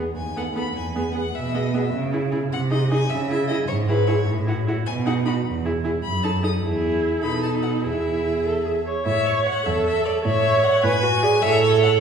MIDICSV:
0, 0, Header, 1, 5, 480
1, 0, Start_track
1, 0, Key_signature, 4, "major"
1, 0, Tempo, 391645
1, 923, Time_signature, 6, 3, 24, 8
1, 7638, Tempo, 402685
1, 11478, Tempo, 393701
1, 14584, End_track
2, 0, Start_track
2, 0, Title_t, "Violin"
2, 0, Program_c, 0, 40
2, 199, Note_on_c, 0, 80, 59
2, 455, Note_on_c, 0, 78, 48
2, 473, Note_off_c, 0, 80, 0
2, 674, Note_off_c, 0, 78, 0
2, 682, Note_on_c, 0, 83, 55
2, 913, Note_off_c, 0, 83, 0
2, 920, Note_on_c, 0, 80, 55
2, 1153, Note_off_c, 0, 80, 0
2, 1160, Note_on_c, 0, 80, 48
2, 1392, Note_off_c, 0, 80, 0
2, 1399, Note_on_c, 0, 78, 56
2, 1648, Note_on_c, 0, 76, 61
2, 1667, Note_off_c, 0, 78, 0
2, 1891, Note_on_c, 0, 75, 55
2, 1909, Note_off_c, 0, 76, 0
2, 2130, Note_on_c, 0, 76, 50
2, 2148, Note_off_c, 0, 75, 0
2, 2370, Note_off_c, 0, 76, 0
2, 3094, Note_on_c, 0, 78, 76
2, 3188, Note_off_c, 0, 78, 0
2, 3326, Note_on_c, 0, 75, 67
2, 3552, Note_off_c, 0, 75, 0
2, 3559, Note_on_c, 0, 80, 80
2, 3793, Note_on_c, 0, 76, 71
2, 3811, Note_off_c, 0, 80, 0
2, 4037, Note_off_c, 0, 76, 0
2, 4047, Note_on_c, 0, 76, 69
2, 4260, Note_off_c, 0, 76, 0
2, 4267, Note_on_c, 0, 75, 70
2, 4365, Note_off_c, 0, 75, 0
2, 4503, Note_on_c, 0, 73, 77
2, 4601, Note_off_c, 0, 73, 0
2, 4757, Note_on_c, 0, 71, 69
2, 4985, Note_on_c, 0, 73, 62
2, 5003, Note_off_c, 0, 71, 0
2, 5232, Note_off_c, 0, 73, 0
2, 5959, Note_on_c, 0, 80, 82
2, 6054, Note_off_c, 0, 80, 0
2, 6205, Note_on_c, 0, 78, 55
2, 6300, Note_off_c, 0, 78, 0
2, 6437, Note_on_c, 0, 83, 68
2, 6533, Note_off_c, 0, 83, 0
2, 7394, Note_on_c, 0, 83, 76
2, 7636, Note_on_c, 0, 81, 62
2, 7654, Note_off_c, 0, 83, 0
2, 7873, Note_off_c, 0, 81, 0
2, 7883, Note_on_c, 0, 87, 59
2, 7976, Note_off_c, 0, 87, 0
2, 8823, Note_on_c, 0, 83, 66
2, 9048, Note_off_c, 0, 83, 0
2, 9062, Note_on_c, 0, 81, 55
2, 9157, Note_off_c, 0, 81, 0
2, 9297, Note_on_c, 0, 78, 49
2, 9393, Note_off_c, 0, 78, 0
2, 9526, Note_on_c, 0, 76, 48
2, 10726, Note_off_c, 0, 76, 0
2, 10999, Note_on_c, 0, 76, 80
2, 11246, Note_on_c, 0, 73, 68
2, 11264, Note_off_c, 0, 76, 0
2, 11468, Note_off_c, 0, 73, 0
2, 11476, Note_on_c, 0, 78, 73
2, 11722, Note_on_c, 0, 76, 70
2, 11740, Note_off_c, 0, 78, 0
2, 11964, Note_off_c, 0, 76, 0
2, 11973, Note_on_c, 0, 76, 71
2, 12191, Note_off_c, 0, 76, 0
2, 12199, Note_on_c, 0, 74, 67
2, 12296, Note_off_c, 0, 74, 0
2, 12451, Note_on_c, 0, 76, 75
2, 12919, Note_on_c, 0, 78, 84
2, 12937, Note_off_c, 0, 76, 0
2, 13154, Note_off_c, 0, 78, 0
2, 13162, Note_on_c, 0, 80, 101
2, 13876, Note_on_c, 0, 76, 106
2, 13894, Note_off_c, 0, 80, 0
2, 14117, Note_off_c, 0, 76, 0
2, 14124, Note_on_c, 0, 73, 82
2, 14357, Note_off_c, 0, 73, 0
2, 14372, Note_on_c, 0, 78, 92
2, 14465, Note_off_c, 0, 78, 0
2, 14584, End_track
3, 0, Start_track
3, 0, Title_t, "Violin"
3, 0, Program_c, 1, 40
3, 448, Note_on_c, 1, 69, 32
3, 524, Note_off_c, 1, 69, 0
3, 690, Note_on_c, 1, 69, 35
3, 766, Note_off_c, 1, 69, 0
3, 1179, Note_on_c, 1, 68, 36
3, 1253, Note_off_c, 1, 68, 0
3, 1419, Note_on_c, 1, 68, 33
3, 1494, Note_off_c, 1, 68, 0
3, 1897, Note_on_c, 1, 68, 38
3, 1973, Note_off_c, 1, 68, 0
3, 2139, Note_on_c, 1, 68, 40
3, 2214, Note_off_c, 1, 68, 0
3, 2611, Note_on_c, 1, 68, 36
3, 2687, Note_off_c, 1, 68, 0
3, 2840, Note_on_c, 1, 68, 40
3, 2918, Note_off_c, 1, 68, 0
3, 3312, Note_on_c, 1, 68, 47
3, 3391, Note_off_c, 1, 68, 0
3, 3567, Note_on_c, 1, 68, 47
3, 3643, Note_off_c, 1, 68, 0
3, 4051, Note_on_c, 1, 68, 45
3, 4126, Note_off_c, 1, 68, 0
3, 4302, Note_on_c, 1, 68, 42
3, 4374, Note_off_c, 1, 68, 0
3, 4770, Note_on_c, 1, 68, 51
3, 4844, Note_off_c, 1, 68, 0
3, 5010, Note_on_c, 1, 68, 51
3, 5084, Note_off_c, 1, 68, 0
3, 5495, Note_on_c, 1, 66, 42
3, 5568, Note_off_c, 1, 66, 0
3, 5740, Note_on_c, 1, 66, 43
3, 5812, Note_off_c, 1, 66, 0
3, 6221, Note_on_c, 1, 66, 48
3, 6293, Note_off_c, 1, 66, 0
3, 6463, Note_on_c, 1, 66, 43
3, 6534, Note_off_c, 1, 66, 0
3, 6933, Note_on_c, 1, 68, 42
3, 7007, Note_off_c, 1, 68, 0
3, 7171, Note_on_c, 1, 68, 40
3, 7245, Note_off_c, 1, 68, 0
3, 7648, Note_on_c, 1, 69, 46
3, 7722, Note_off_c, 1, 69, 0
3, 7883, Note_on_c, 1, 69, 45
3, 7957, Note_off_c, 1, 69, 0
3, 8119, Note_on_c, 1, 68, 47
3, 8784, Note_off_c, 1, 68, 0
3, 8825, Note_on_c, 1, 69, 41
3, 9548, Note_on_c, 1, 68, 40
3, 9566, Note_off_c, 1, 69, 0
3, 10761, Note_off_c, 1, 68, 0
3, 11496, Note_on_c, 1, 73, 55
3, 11669, Note_off_c, 1, 73, 0
3, 12215, Note_on_c, 1, 73, 61
3, 12388, Note_off_c, 1, 73, 0
3, 12921, Note_on_c, 1, 74, 59
3, 13099, Note_off_c, 1, 74, 0
3, 13646, Note_on_c, 1, 74, 72
3, 13821, Note_off_c, 1, 74, 0
3, 13888, Note_on_c, 1, 73, 67
3, 14584, Note_off_c, 1, 73, 0
3, 14584, End_track
4, 0, Start_track
4, 0, Title_t, "Viola"
4, 0, Program_c, 2, 41
4, 448, Note_on_c, 2, 59, 31
4, 524, Note_off_c, 2, 59, 0
4, 684, Note_on_c, 2, 59, 36
4, 761, Note_off_c, 2, 59, 0
4, 1169, Note_on_c, 2, 59, 36
4, 1246, Note_off_c, 2, 59, 0
4, 1410, Note_on_c, 2, 59, 33
4, 1487, Note_off_c, 2, 59, 0
4, 1890, Note_on_c, 2, 59, 34
4, 1967, Note_off_c, 2, 59, 0
4, 2136, Note_on_c, 2, 59, 40
4, 2212, Note_off_c, 2, 59, 0
4, 2608, Note_on_c, 2, 64, 40
4, 2685, Note_off_c, 2, 64, 0
4, 2846, Note_on_c, 2, 64, 38
4, 2923, Note_off_c, 2, 64, 0
4, 3327, Note_on_c, 2, 63, 44
4, 3403, Note_off_c, 2, 63, 0
4, 3568, Note_on_c, 2, 63, 47
4, 3644, Note_off_c, 2, 63, 0
4, 4045, Note_on_c, 2, 64, 49
4, 4121, Note_off_c, 2, 64, 0
4, 4284, Note_on_c, 2, 64, 48
4, 4359, Note_off_c, 2, 64, 0
4, 4762, Note_on_c, 2, 64, 46
4, 4838, Note_off_c, 2, 64, 0
4, 4991, Note_on_c, 2, 64, 52
4, 5069, Note_off_c, 2, 64, 0
4, 5474, Note_on_c, 2, 64, 45
4, 5551, Note_off_c, 2, 64, 0
4, 5722, Note_on_c, 2, 64, 46
4, 5798, Note_off_c, 2, 64, 0
4, 6197, Note_on_c, 2, 63, 47
4, 6274, Note_off_c, 2, 63, 0
4, 6437, Note_on_c, 2, 63, 44
4, 6514, Note_off_c, 2, 63, 0
4, 6925, Note_on_c, 2, 64, 43
4, 7000, Note_off_c, 2, 64, 0
4, 7158, Note_on_c, 2, 64, 41
4, 7234, Note_off_c, 2, 64, 0
4, 7640, Note_on_c, 2, 63, 37
4, 7716, Note_off_c, 2, 63, 0
4, 7873, Note_on_c, 2, 63, 42
4, 7949, Note_off_c, 2, 63, 0
4, 8115, Note_on_c, 2, 64, 49
4, 8824, Note_on_c, 2, 63, 41
4, 8842, Note_off_c, 2, 64, 0
4, 9550, Note_on_c, 2, 64, 41
4, 9568, Note_off_c, 2, 63, 0
4, 10229, Note_off_c, 2, 64, 0
4, 10284, Note_on_c, 2, 69, 47
4, 10379, Note_off_c, 2, 69, 0
4, 10519, Note_on_c, 2, 68, 31
4, 10614, Note_off_c, 2, 68, 0
4, 10766, Note_on_c, 2, 73, 46
4, 11001, Note_off_c, 2, 73, 0
4, 11010, Note_on_c, 2, 73, 70
4, 11676, Note_off_c, 2, 73, 0
4, 11730, Note_on_c, 2, 69, 64
4, 12433, Note_off_c, 2, 69, 0
4, 12442, Note_on_c, 2, 73, 80
4, 13160, Note_on_c, 2, 71, 68
4, 13179, Note_off_c, 2, 73, 0
4, 13398, Note_on_c, 2, 66, 67
4, 13417, Note_off_c, 2, 71, 0
4, 13636, Note_on_c, 2, 68, 61
4, 13654, Note_off_c, 2, 66, 0
4, 13878, Note_off_c, 2, 68, 0
4, 13883, Note_on_c, 2, 69, 80
4, 14584, Note_off_c, 2, 69, 0
4, 14584, End_track
5, 0, Start_track
5, 0, Title_t, "Cello"
5, 0, Program_c, 3, 42
5, 203, Note_on_c, 3, 39, 36
5, 804, Note_off_c, 3, 39, 0
5, 919, Note_on_c, 3, 40, 41
5, 1525, Note_off_c, 3, 40, 0
5, 1652, Note_on_c, 3, 47, 44
5, 2251, Note_off_c, 3, 47, 0
5, 2365, Note_on_c, 3, 49, 48
5, 2965, Note_off_c, 3, 49, 0
5, 3089, Note_on_c, 3, 48, 51
5, 3686, Note_off_c, 3, 48, 0
5, 3800, Note_on_c, 3, 49, 53
5, 4398, Note_off_c, 3, 49, 0
5, 4520, Note_on_c, 3, 44, 59
5, 5118, Note_off_c, 3, 44, 0
5, 5240, Note_on_c, 3, 45, 52
5, 5839, Note_off_c, 3, 45, 0
5, 5963, Note_on_c, 3, 47, 53
5, 6559, Note_off_c, 3, 47, 0
5, 6682, Note_on_c, 3, 40, 54
5, 7279, Note_off_c, 3, 40, 0
5, 7405, Note_on_c, 3, 42, 51
5, 7997, Note_off_c, 3, 42, 0
5, 8122, Note_on_c, 3, 40, 46
5, 8785, Note_off_c, 3, 40, 0
5, 8844, Note_on_c, 3, 47, 37
5, 9551, Note_on_c, 3, 40, 37
5, 9569, Note_off_c, 3, 47, 0
5, 10763, Note_off_c, 3, 40, 0
5, 11006, Note_on_c, 3, 45, 63
5, 11571, Note_off_c, 3, 45, 0
5, 11736, Note_on_c, 3, 40, 59
5, 12301, Note_off_c, 3, 40, 0
5, 12449, Note_on_c, 3, 45, 67
5, 13012, Note_off_c, 3, 45, 0
5, 13165, Note_on_c, 3, 45, 72
5, 13732, Note_off_c, 3, 45, 0
5, 13889, Note_on_c, 3, 45, 63
5, 14584, Note_off_c, 3, 45, 0
5, 14584, End_track
0, 0, End_of_file